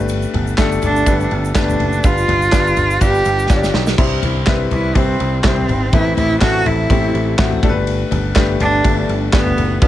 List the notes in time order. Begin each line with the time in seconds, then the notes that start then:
Already playing: G1 A3 D4 G4 B4
0.08 ride, shaker
0.22 shaker
0.34 G1, floor tom, ride
0.47 shaker
0.57 G1 A3 D4 G4 A4, kick, snare, clap, ride, shaker
0.72 shaker
0.82 G1 D4, floor tom, ride, shaker
0.96 shaker
1.06 G1 A3 D4 G4 B4, kick, ride, shaker
1.20 shaker
1.31 G1, ride
1.45 shaker
1.55 G1 A3 D4 G4 B4, kick, snare, clap, ride, shaker
1.69 floor tom, shaker
1.79 F#1, floor tom, ride
1.93 shaker
2.03 G1 G3 D4 F4 B4, kick, ride, shaker
2.18 shaker
2.28 G1, floor tom, ride
2.42 shaker
2.52 G1 G3 D4 F4 B4, kick, snare, clap, ride, shaker
2.67 shaker
2.76 G1, floor tom, ride, shaker
2.90 shaker
3.00 G1 G3 D4 F4 G4 B4, kick, ride, shaker
3.15 shaker
3.25 G1, ride, shaker
3.39 shaker
3.49 G1 G3 D4 F4 C#5, kick, snare, shaker
3.56 D5
3.63 snare, shaker
3.74 B1, snare
3.86 snare, shaker
3.98 C2 G2 G3 C4 E4 C5, kick, crash
4.22 C2, floor tom, ride
4.47 C2 G3 C4 E4 B4, kick, snare, clap, ride
4.71 C2 E4, floor tom, ride
4.95 C2 G3 C4 E4 C5, kick, ride
5.20 C2, ride
5.44 C2 G3 C4 E4 C5, kick, snare, clap, ride
5.58 floor tom
5.69 G#1, floor tom, ride
5.93 A1 A3 C4 E4 B4, kick, ride
6.17 A1 E4, floor tom, ride
6.41 A1 A3 C4 E4 F#4 A4, kick, snare, clap, ride
6.65 A1 E4, floor tom, ride
6.90 A1 A3 C4 E4 G4, kick, ride
7.14 A1, ride
7.38 A1 A3 C4 E4 F#4, kick, snare, clap, ride
7.52 floor tom
7.63 G1 A3 D4 G4 A4, kick, floor tom, ride
7.69 B4
7.87 ride
8.11 G1, floor tom, ride
8.35 G1 A3 D4 G4 B4, kick, snare, clap, ride
8.60 G1 D4, floor tom, ride
8.84 G1 A3 D4 G4 B4, kick, ride
9.09 G1, ride
9.32 G1 A3 B3 D4 G4 B4, kick, snare, clap, ride
9.47 floor tom
9.57 F#1, floor tom, ride
9.81 G1 G3 B3 D4 F4 B4, kick, ride